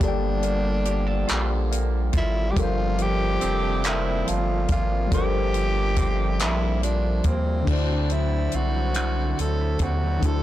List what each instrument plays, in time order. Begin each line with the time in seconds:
Already playing: harmonium F3 G3 A#3, tine electric piano G3, clean electric guitar C4 F4 A#4
0.00 analog synth bass G1, harmonium D3, clean electric guitar G3, tine electric piano A#3 G4 A4, tenor saxophone D4, kick, closed hi-hat
0.06 tine electric piano D5 G5
0.43 clean electric guitar A#3, closed hi-hat
0.85 clean electric guitar G4, closed hi-hat
1.07 clean electric guitar A4
1.28 analog synth bass A#1, clean electric guitar F4, clap, closed hi-hat
1.71 clean electric guitar A#3, closed hi-hat
2.13 analog synth bass G#1, clean electric guitar F4, kick, closed hi-hat
2.17 tenor saxophone E4
2.51 tine electric piano F3 G3, tenor saxophone G4
2.55 analog synth bass G1, clean electric guitar G2, harmonium C3 F3 G3, tine electric piano A4, kick, closed hi-hat
2.60 tenor saxophone F4, tine electric piano A#4 C5
2.98 clean electric guitar F3, tenor saxophone G4, closed hi-hat
3.41 analog synth bass F1, horn section D3 F3 C4, clean electric guitar C4, closed hi-hat
3.84 clean electric guitar A#3, tenor saxophone E4, clap, closed hi-hat
4.26 analog synth bass G1, clean electric guitar F3, tenor saxophone F4, closed hi-hat
4.68 analog synth bass G#1, clean electric guitar A#3, tenor saxophone F4, kick, closed hi-hat
5.07 tine electric piano F3 G3
5.12 analog synth bass G1, clean electric guitar G2, harmonium C3 A#3, tenor saxophone G4, tine electric piano A4 A#4, kick, closed hi-hat
5.17 tine electric piano C5
5.54 clean electric guitar F3, closed hi-hat
5.96 clean electric guitar C4, kick, closed hi-hat
6.39 analog synth bass A#1, clean electric guitar A#3, tenor saxophone E4, clap, closed hi-hat
6.83 clean electric guitar F3, tenor saxophone D4, closed hi-hat
7.24 analog synth bass D#2, clean electric guitar A#3, tenor saxophone C4, kick, closed hi-hat
7.62 tine electric piano D3 D4
7.67 analog synth bass D2, clean electric guitar D3, tenor saxophone D4, harmonium E4 C5 D5 F#5, tine electric piano E4 F#4, kick, crash
7.72 tine electric piano C5
7.89 clean electric guitar C4
8.10 clean electric guitar F#3, tenor saxophone E4, closed hi-hat
8.33 clean electric guitar E4
8.52 analog synth bass C2, clean electric guitar C4, tenor saxophone F#4, closed hi-hat
8.76 clean electric guitar F#3
8.94 clean electric guitar D3, finger snap, closed hi-hat
9.18 clean electric guitar C4
9.39 analog synth bass D2, clean electric guitar F#3, tenor saxophone A4, closed hi-hat
9.61 clean electric guitar E4
9.79 analog synth bass D#2, clean electric guitar C4, kick, closed hi-hat
9.83 tenor saxophone F#4
10.03 clean electric guitar F#3
10.18 tine electric piano D3 D4, closed hi-hat
10.23 analog synth bass D2, clean electric guitar D3, tine electric piano E4 F#4, tenor saxophone A4, kick
10.28 tine electric piano A4